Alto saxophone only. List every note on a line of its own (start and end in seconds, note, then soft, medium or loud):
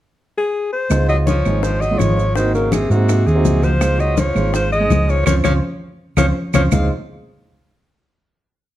0.38 0.71 G#4 medium
0.73 1.06 C5 medium
1.09 1.18 D#5 medium
1.26 1.65 C#5 medium
1.64 1.82 C5 medium
1.81 2.00 D#5 medium
1.98 2.35 C#5 medium
2.36 2.53 C5 medium
2.55 2.74 A#4 medium
2.72 2.93 G#4 medium
2.91 3.28 F#4 medium
3.27 3.66 G#4 medium
3.64 4.02 C5 medium
4.00 4.21 D#5 medium
4.19 4.54 C#5 medium
4.55 4.72 C5 medium
4.73 5.12 D#5 medium
5.10 5.26 C#5 loud
5.27 5.35 C#5 medium
5.44 5.53 C#5 medium
6.18 6.27 C#5 medium
6.54 6.63 C#5 medium
6.73 6.89 F5 medium